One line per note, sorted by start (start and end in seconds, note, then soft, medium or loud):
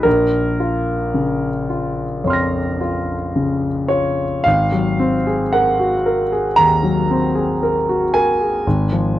0.03 2.21 A#1 soft
0.03 3.88 A#4 medium
0.60 1.47 F4 soft
1.14 2.03 C#3 soft
1.70 2.59 F4 soft
2.24 3.13 F2 soft
2.24 3.87 C#5 soft
2.24 4.41 C6 soft
2.30 4.43 F6 soft
2.30 4.44 A#6 soft
2.81 3.67 F4 soft
3.36 4.23 C#3 soft
3.88 4.44 F4 soft
3.88 4.44 C#5 medium
4.44 6.54 G#1 soft
4.44 5.53 F5 medium
4.72 5.16 F#3 soft
4.99 5.43 C4 soft
5.27 5.69 G#4 soft
5.53 5.95 A#4 soft
5.53 6.57 F#5 medium
5.79 6.21 F#4 soft
6.06 6.47 A#4 soft
6.32 6.73 G#4 soft
6.56 6.99 D#2 soft
6.56 8.13 A#5 medium
6.83 7.25 F#3 soft
7.11 7.52 C4 soft
7.35 7.77 G#4 soft
7.63 8.04 A#4 soft
7.89 8.30 F#4 soft
8.14 8.55 A#4 soft
8.14 9.19 G#5 medium
8.41 8.66 G#4 soft
8.67 9.19 G#1 soft
8.92 9.19 F3 soft